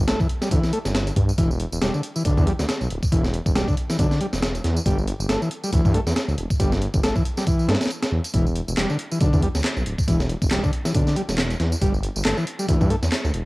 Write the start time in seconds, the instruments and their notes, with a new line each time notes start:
0.08 detuned saw bass G1, transistor combo organ A3, snare, closed hi-hat, tambourine
0.20 transistor combo organ E3, kick, tambourine
0.29 closed hi-hat
0.42 transistor combo organ G3, snare, tambourine
0.51 detuned saw bass D2, transistor combo organ E3, kick, closed hi-hat, tambourine
0.64 snare, tambourine
0.73 transistor combo organ A3, closed hi-hat
0.85 detuned saw bass G1, snare, tambourine
0.95 snare, closed hi-hat, tambourine
1.07 closed hi-hat, tambourine
1.16 detuned saw bass G2, kick, closed hi-hat
1.29 tambourine
1.38 detuned saw bass E1, transistor combo organ E3, kick, closed hi-hat, tambourine
1.51 tambourine
1.60 closed hi-hat
1.72 detuned saw bass E1, tambourine
1.82 detuned saw bass E1, transistor combo organ G3, snare, closed hi-hat, tambourine
1.94 transistor combo organ D3, tambourine
2.03 closed hi-hat
2.16 transistor combo organ E3, tambourine
2.25 detuned saw bass B1, transistor combo organ D3, kick, closed hi-hat, tambourine
2.37 detuned saw bass E2, kick, tambourine
2.47 transistor combo organ G3, closed hi-hat
2.59 detuned saw bass D2, snare, tambourine
2.69 snare, closed hi-hat, tambourine
2.81 detuned saw bass B1, tambourine
2.90 detuned saw bass D1, closed hi-hat
3.03 kick, tambourine
3.12 detuned saw bass E1, transistor combo organ E3, kick, closed hi-hat, tambourine
3.24 snare, tambourine
3.34 closed hi-hat
3.46 detuned saw bass E1, kick, tambourine
3.55 detuned saw bass E1, transistor combo organ G3, snare, closed hi-hat, tambourine
3.68 transistor combo organ D3, kick, tambourine
3.77 closed hi-hat
3.90 transistor combo organ E3, snare, tambourine
3.99 detuned saw bass B1, transistor combo organ D3, kick, closed hi-hat, tambourine
4.11 snare, tambourine
4.21 transistor combo organ G3, closed hi-hat
4.33 detuned saw bass E1, snare, tambourine
4.42 snare, closed hi-hat, tambourine
4.55 closed hi-hat, tambourine
4.64 detuned saw bass E2, snare, closed hi-hat
4.77 tambourine
4.86 detuned saw bass G1, transistor combo organ G3, kick, closed hi-hat, tambourine
4.99 tambourine
5.08 closed hi-hat
5.20 detuned saw bass G1, tambourine
5.29 detuned saw bass G1, transistor combo organ A3, snare, closed hi-hat, tambourine
5.42 transistor combo organ E3, tambourine
5.51 closed hi-hat
5.64 transistor combo organ G3, tambourine
5.73 detuned saw bass D2, transistor combo organ E3, kick, closed hi-hat, tambourine
5.85 detuned saw bass G2, kick, tambourine
5.94 transistor combo organ A3, closed hi-hat
6.07 detuned saw bass E2, snare, tambourine
6.16 snare, closed hi-hat, tambourine
6.28 detuned saw bass D2, tambourine
6.38 detuned saw bass E1, closed hi-hat
6.50 kick, tambourine
6.60 detuned saw bass G1, transistor combo organ G3, kick, closed hi-hat, tambourine
6.72 snare, tambourine
6.82 closed hi-hat
6.94 detuned saw bass G1, kick, tambourine
7.03 detuned saw bass G1, transistor combo organ A3, snare, closed hi-hat, tambourine
7.16 transistor combo organ E3, kick, tambourine
7.25 closed hi-hat
7.37 transistor combo organ G3, snare, tambourine
7.47 transistor combo organ E3, kick, closed hi-hat, tambourine
7.59 tambourine
7.68 detuned saw bass G2, transistor combo organ A3, snare, closed hi-hat
7.75 snare, closed hi-hat
7.81 snare, closed hi-hat, tambourine
7.86 snare, closed hi-hat
7.90 closed hi-hat, tambourine
8.03 snare, closed hi-hat, tambourine
8.12 detuned saw bass E2
8.24 closed hi-hat, tambourine
8.34 detuned saw bass E1, transistor combo organ E3, kick, closed hi-hat, tambourine
8.47 tambourine
8.56 closed hi-hat
8.68 detuned saw bass E1, tambourine
8.77 detuned saw bass E1, transistor combo organ G3, snare, clap, closed hi-hat, tambourine
8.90 transistor combo organ D3, tambourine
8.99 closed hi-hat
9.11 transistor combo organ E3, tambourine
9.21 detuned saw bass B1, transistor combo organ D3, kick, closed hi-hat, tambourine
9.33 detuned saw bass E2, kick, tambourine
9.42 transistor combo organ G3, closed hi-hat
9.55 detuned saw bass D2, snare, tambourine
9.64 snare, clap, closed hi-hat, tambourine
9.77 detuned saw bass B1, tambourine
9.86 detuned saw bass D1, closed hi-hat
9.98 kick, tambourine
10.08 detuned saw bass E1, transistor combo organ E3, kick, closed hi-hat, tambourine
10.20 snare, tambourine
10.29 closed hi-hat
10.42 detuned saw bass E1, kick, tambourine
10.51 detuned saw bass E1, transistor combo organ G3, snare, clap, closed hi-hat, tambourine
10.63 transistor combo organ D3, kick, tambourine
10.73 closed hi-hat
10.85 transistor combo organ E3, snare, tambourine
10.95 detuned saw bass B1, transistor combo organ D3, kick, closed hi-hat, tambourine
11.07 snare, tambourine
11.16 transistor combo organ G3, closed hi-hat
11.29 detuned saw bass E1, snare, tambourine
11.38 snare, clap, closed hi-hat, tambourine
11.50 closed hi-hat, tambourine
11.60 detuned saw bass E2, snare, closed hi-hat
11.72 tambourine
11.81 detuned saw bass G1, transistor combo organ G3, kick, closed hi-hat, tambourine
11.94 tambourine
12.03 closed hi-hat
12.16 detuned saw bass G1, tambourine
12.25 detuned saw bass G1, transistor combo organ A3, snare, clap, closed hi-hat, tambourine
12.37 transistor combo organ E3, tambourine
12.47 closed hi-hat
12.59 transistor combo organ G3, tambourine
12.68 detuned saw bass D2, transistor combo organ E3, kick, closed hi-hat, tambourine
12.81 detuned saw bass G2, kick, tambourine
12.90 transistor combo organ A3, closed hi-hat
13.03 detuned saw bass E2, snare, tambourine
13.12 snare, clap, closed hi-hat, tambourine
13.24 detuned saw bass D2, tambourine
13.34 detuned saw bass E1, closed hi-hat